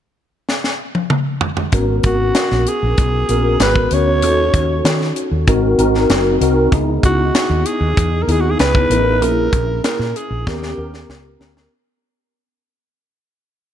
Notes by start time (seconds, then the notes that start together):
0.49 snare
0.64 snare
0.95 high tom
1.10 mid tom
1.41 floor tom
1.57 floor tom
1.72 G#1 B3 C#4 F#4 A#4, kick, closed hi-hat
2.03 G#1 F#4, kick, closed hi-hat
2.35 snare, closed hi-hat
2.51 A#1, snare
2.67 G#4, closed hi-hat
2.83 A#1
2.98 B1, kick, closed hi-hat
3.29 A#1 B3 C#4 F#4 A#4, closed hi-hat
3.60 G#1 B4, snare, closed hi-hat
3.76 kick
3.91 D2 B3 C#4 F#4 C#5, closed hi-hat
4.22 D#2 C#4 D#4 F#4 A4, closed hi-hat
4.54 D#2, kick, closed hi-hat
4.84 D#3, snare, closed hi-hat
5.01 snare
5.16 closed hi-hat
5.31 D#2
5.47 G#1 C4 D#4 F#4 A#4, kick, closed hi-hat
5.78 G#1 C4 D#4 F#4 A#4, closed hi-hat
5.95 snare
6.10 F#1, snare, closed hi-hat
6.41 C2 C4 D#4 F#4 A#4, closed hi-hat
6.72 C#2 B3 D#4 E4 G#4, kick, closed hi-hat
7.03 C#2 F#4, kick, closed hi-hat
7.35 snare, closed hi-hat
7.50 D#2
7.66 G#4, closed hi-hat
7.81 D#2
7.97 E2, kick, closed hi-hat
8.23 A#4
8.28 D#2 B3 D#4 E4 G#4, closed hi-hat
8.32 G#4
8.41 F#4
8.51 G#4
8.59 C#2 B4, snare, closed hi-hat
8.75 kick
8.90 A1 B3 D#4 E4 A#4, closed hi-hat
9.21 A#1 A#3 C#4 E4 G#4 A#4, closed hi-hat
9.53 A#1, kick, closed hi-hat
9.84 A#4, snare, closed hi-hat
9.99 A#2, snare
10.16 G#4, closed hi-hat
10.31 A#1
10.47 D#2 B3 C#4 G4 A#4, kick, snare
10.63 snare
10.77 D#2 B3 C#4 G4 A#4
10.94 snare
11.09 C#2, snare
11.39 D2 B3 C#4 G4 A#4, snare
11.57 snare